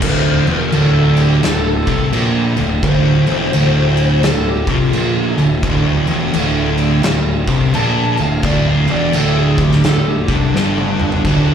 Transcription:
0.01 0.43 D1 loud
0.01 0.45 D2 loud
0.01 11.54 D3 medium
0.01 11.19 A3 medium
0.01 11.54 F4 medium
0.01 0.57 C5 medium
0.01 kick loud
0.01 crash loud
0.01 crash medium
0.46 0.70 E1 loud
0.46 0.72 E2 loud
0.46 crash medium
0.57 0.71 A#4 medium
0.72 1.39 D1 medium
0.72 1.41 D2 medium
0.72 0.96 A4 medium
0.72 crash medium
0.98 1.19 A4 medium
1.17 crash medium
1.21 1.43 G4 medium
1.42 1.84 D1 medium
1.42 1.78 D2 medium
1.42 1.66 A4 medium
1.42 snare loud
1.42 crash medium
1.68 2.04 A4 loud
1.87 2.11 C2 medium
1.87 2.12 C3 loud
1.87 kick medium
1.87 crash medium
2.12 2.54 A#1 medium
2.12 2.55 A#2 loud
2.12 crash medium
2.57 2.81 D1 medium
2.57 2.78 D2 medium
2.57 crash medium
2.83 3.24 D1 loud
2.83 3.26 D2 loud
2.83 4.20 C5 loud
2.83 kick loud
2.83 crash medium
3.26 3.52 E1 loud
3.26 3.52 E2 loud
3.26 crash medium
3.53 4.20 D1 medium
3.53 4.22 D2 medium
3.53 crash medium
3.97 crash medium
4.23 4.64 D1 medium
4.23 4.59 D2 medium
4.23 4.46 A4 medium
4.23 snare loud
4.23 crash medium
4.48 4.70 G4 loud
4.67 4.91 C2 medium
4.67 4.93 C3 loud
4.67 kick medium
4.67 crash medium
4.72 5.39 F4 medium
4.93 5.34 A#1 medium
4.93 5.36 A#2 loud
4.93 crash medium
5.37 5.62 D1 medium
5.37 5.58 D2 medium
5.37 crash medium
5.63 6.04 D1 loud
5.63 6.07 D2 loud
5.63 kick loud
5.63 crash medium
6.07 6.32 E1 loud
6.07 6.33 E2 loud
6.07 crash medium
6.33 6.99 D1 medium
6.33 7.02 D2 medium
6.33 crash medium
6.78 crash medium
7.03 7.44 D1 medium
7.03 7.39 D2 medium
7.03 snare loud
7.03 crash medium
7.47 7.72 C2 loud
7.47 7.73 C3 loud
7.47 kick medium
7.47 crash medium
7.73 8.15 A#1 medium
7.73 8.17 A#2 loud
7.73 8.20 A5 medium
7.73 crash medium
8.17 8.42 D1 medium
8.17 8.39 D2 medium
8.17 crash medium
8.21 8.44 F5 medium
8.43 8.85 D1 loud
8.43 8.87 D2 loud
8.43 8.67 D5 medium
8.43 kick loud
8.43 crash medium
8.68 8.90 F5 medium
8.87 9.12 E1 loud
8.87 9.13 E2 loud
8.87 9.13 D5 medium
8.87 crash medium
9.13 9.80 D1 medium
9.13 9.83 D2 medium
9.13 9.37 A4 medium
9.13 crash medium
9.39 9.61 G#4 medium
9.58 kick medium
9.58 crash medium
9.62 9.84 G4 medium
9.72 snare soft
9.84 10.25 D1 medium
9.84 10.19 D2 medium
9.84 10.07 A4 medium
9.84 snare loud
9.84 crash medium
10.09 10.31 G4 medium
10.28 10.52 C2 medium
10.28 10.53 C3 loud
10.28 kick medium
10.28 crash medium
10.32 10.54 D4 medium
10.54 11.20 G1 medium
10.54 11.23 G2 loud
10.54 11.54 D4 loud
10.54 snare medium
10.77 high tom medium
11.00 mid tom medium
11.12 floor tom loud
11.23 11.54 D1 loud
11.23 11.54 D2 loud
11.23 11.54 B4 medium
11.23 kick loud
11.23 crash medium

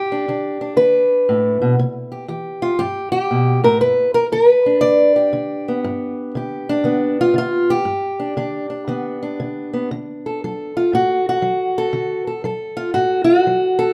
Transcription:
0.00 0.25 G2 medium
0.00 0.77 G4 medium
0.12 0.28 D4 soft
0.28 0.75 D3 medium
0.28 0.60 D4 soft
0.61 1.77 D4 soft
0.76 1.24 D3 medium
0.76 1.78 B4 medium
1.29 1.61 A2 medium
1.62 1.79 B2 medium
1.79 2.26 C3 medium
2.12 2.28 G4 soft
2.28 2.76 E3 medium
2.28 2.78 G4 soft
2.62 2.79 F4 medium
2.79 3.27 G2 medium
2.79 3.11 G4 medium
3.12 3.63 G4 medium
3.31 3.63 B2 medium
3.64 3.81 A2 medium
3.64 3.81 A#4 medium
3.81 4.28 G2 medium
3.81 4.14 B4 medium
4.14 4.24 A#4 medium
4.32 4.78 D3 medium
4.32 5.15 B4 medium
4.66 6.69 D4 soft
4.81 5.29 D3 medium
4.81 5.65 D5 loud
5.16 6.37 G4 soft
5.33 5.80 D3 medium
5.68 6.84 B3 soft
5.84 6.31 G2 medium
6.35 6.82 D3 medium
6.35 7.69 G4 soft
6.69 7.19 D4 medium
6.84 7.31 D3 medium
6.84 7.84 B3 soft
7.21 7.37 F4 medium
7.34 7.82 D3 medium
7.38 7.70 F4 loud
7.70 9.90 G4 medium
7.85 8.33 G2 medium
8.20 8.37 D4 soft
8.37 8.84 D3 medium
8.37 8.69 D4 soft
8.70 9.22 D4 soft
8.88 9.35 D3 medium
8.88 9.72 B3 soft
9.23 10.76 D4 soft
9.40 9.87 D3 medium
9.73 9.88 B3 soft
9.91 10.38 D3 medium
10.26 10.44 A4 soft
10.44 10.90 F#3 medium
10.44 11.77 A4 soft
10.77 10.93 F4 medium
10.93 11.40 A2 medium
10.93 11.26 F#4 medium
11.29 12.29 F#4 medium
11.42 11.90 F#3 medium
11.78 12.26 A4 medium
11.93 12.41 D3 medium
12.27 12.44 A4 soft
12.44 12.92 F#3 medium
12.44 13.78 A4 soft
12.77 12.94 F4 medium
12.94 13.43 A2 medium
12.94 13.23 F#4 medium
13.24 13.93 F#4 medium
13.47 13.93 F#3 medium
13.79 13.93 A4 medium

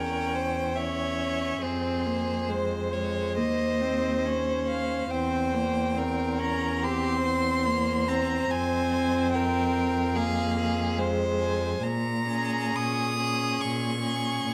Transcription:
0.00 1.62 E2 soft
0.00 0.77 C#4 soft
0.00 0.36 A#4 soft
0.00 0.77 G5 medium
0.35 0.79 C5 soft
0.76 1.65 C#4 soft
0.76 1.63 C#5 soft
0.76 1.63 E5 soft
1.62 3.40 F2 soft
1.62 2.08 C4 soft
1.62 2.51 G#4 soft
1.62 2.95 C5 medium
2.06 2.50 A#3 soft
2.49 2.93 G#3 soft
2.49 5.10 C5 soft
2.93 3.38 G#3 soft
2.93 3.38 C#5 soft
3.37 5.10 D#2 soft
3.37 3.83 A#3 soft
3.37 4.23 D#5 medium
3.81 4.27 C4 soft
4.26 5.09 C#4 soft
4.68 5.12 F5 soft
5.10 8.47 E2 soft
5.10 5.55 C4 soft
5.10 6.00 C5 soft
5.10 6.40 G5 soft
5.53 5.98 A#3 soft
5.96 6.40 C4 soft
5.96 6.84 A#4 soft
6.39 6.84 C#4 soft
6.39 6.85 A#5 medium
6.82 7.67 C4 soft
6.82 7.24 G4 soft
6.82 8.10 C6 medium
7.25 9.36 C5 soft
7.66 8.09 A#3 soft
8.08 8.51 C4 soft
8.08 8.52 A#5 medium
8.51 11.79 F2 medium
8.51 10.17 C4 soft
8.51 9.32 G#5 medium
9.33 10.17 A#4 soft
9.33 10.18 G5 medium
10.15 10.99 A#3 soft
10.15 10.57 G#4 soft
10.15 10.99 F5 medium
10.58 11.00 G#4 soft
10.98 11.83 G#3 soft
10.98 11.83 C5 soft
11.41 11.84 G#5 medium
11.83 12.65 A#2 medium
11.83 12.77 A#5 medium
12.28 13.18 C#4 soft
12.28 13.17 G#4 soft
12.76 13.52 A#2 soft
12.76 13.62 D#6 medium
13.18 14.00 C#4 soft
13.18 14.00 G#4 soft
13.61 14.35 A#2 soft
13.61 14.54 C#6 medium
14.01 14.54 C#4 soft
14.01 14.54 G#4 soft
14.44 14.54 A#2 soft

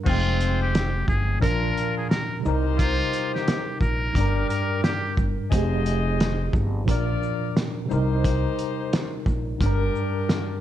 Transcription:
0.04 1.05 F1 loud
0.04 1.39 F3 medium
0.04 1.06 G#3 medium
0.04 1.06 C4 medium
0.04 1.40 C4 medium
0.04 0.58 F4 loud
0.04 1.06 C5 loud
0.04 kick loud
0.04 crash loud
0.10 1.43 G#3 medium
0.10 1.42 G5 medium
0.41 closed hi-hat medium
0.41 shaker medium
0.62 1.06 G4 medium
0.75 snare loud
0.75 closed hi-hat medium
1.08 1.35 G1 medium
1.08 1.39 G#4 medium
1.08 kick loud
1.08 shaker medium
1.39 1.70 A#1 loud
1.39 2.43 A#2 medium
1.39 2.44 F3 medium
1.39 2.44 D4 medium
1.39 2.09 D4 medium
1.39 2.09 F4 medium
1.39 1.94 A#4 loud
1.39 2.09 A#4 medium
1.39 2.45 A#4 medium
1.39 kick loud
1.43 closed hi-hat medium
1.77 closed hi-hat soft
1.77 shaker medium
1.97 2.09 G#4 medium
2.10 2.41 A#4 medium
2.10 snare loud
2.10 snare medium
2.10 closed hi-hat medium
2.40 4.10 C3 medium
2.40 4.11 G3 medium
2.45 2.99 C2 loud
2.45 4.12 D#4 medium
2.45 3.79 D#4 medium
2.45 3.79 G4 medium
2.45 4.14 A#4 medium
2.45 3.79 C5 loud
2.45 shaker medium
2.79 3.31 F4 loud
2.79 kick loud
2.79 closed hi-hat loud
3.13 closed hi-hat medium
3.13 shaker medium
3.34 3.79 G4 medium
3.34 snare soft
3.48 snare loud
3.48 closed hi-hat medium
3.81 4.08 A#1 medium
3.81 4.45 A#4 medium
3.81 kick loud
3.81 shaker medium
4.13 4.43 G1 loud
4.13 5.48 G2 medium
4.13 5.49 G3 medium
4.13 5.16 G4 medium
4.13 5.16 A#4 medium
4.13 5.16 D5 medium
4.13 kick loud
4.13 closed hi-hat medium
4.18 5.50 D4 medium
4.18 5.52 A#4 medium
4.49 4.80 A#4 medium
4.49 closed hi-hat medium
4.49 shaker medium
4.83 5.14 G4 medium
4.83 snare loud
4.83 snare medium
4.83 closed hi-hat medium
5.17 5.34 G1 medium
5.17 kick loud
5.17 shaker medium
5.50 6.50 F1 loud
5.50 6.84 F3 medium
5.50 6.86 C4 medium
5.50 6.52 G#4 medium
5.50 6.52 C5 medium
5.50 6.52 D#5 loud
5.50 kick loud
5.50 closed hi-hat loud
5.55 6.87 G4 medium
5.55 6.88 G#4 medium
5.86 closed hi-hat medium
5.86 shaker medium
6.20 snare loud
6.20 closed hi-hat medium
6.53 6.81 G1 medium
6.53 kick loud
6.53 shaker medium
6.84 7.15 A#1 loud
6.84 7.89 A#2 medium
6.84 7.89 F3 medium
6.84 7.90 D4 medium
6.84 7.91 A#4 medium
6.84 kick loud
6.89 7.56 F4 medium
6.89 7.56 A#4 medium
6.89 7.56 D5 medium
6.89 closed hi-hat medium
7.23 shaker medium
7.57 snare loud
7.57 snare medium
7.57 closed hi-hat medium
7.86 9.55 C3 medium
7.86 9.56 G3 medium
7.90 8.45 C2 loud
7.90 9.24 D#4 medium
7.90 9.58 D#4 medium
7.90 9.24 G4 medium
7.90 9.59 A#4 medium
7.90 9.24 C5 medium
7.90 shaker medium
8.24 kick loud
8.24 closed hi-hat loud
8.59 closed hi-hat medium
8.59 shaker medium
8.93 snare loud
8.93 closed hi-hat medium
9.26 9.54 A#1 medium
9.26 kick loud
9.26 shaker medium
9.58 9.88 G1 loud
9.58 10.61 G2 medium
9.58 10.61 G3 medium
9.58 10.61 D4 medium
9.58 10.61 G4 medium
9.58 10.61 A#4 loud
9.58 kick loud
9.58 closed hi-hat medium
9.63 10.61 D4 medium
9.63 10.61 A#4 medium
9.96 shaker medium
10.29 snare loud
10.29 snare medium
10.29 closed hi-hat medium

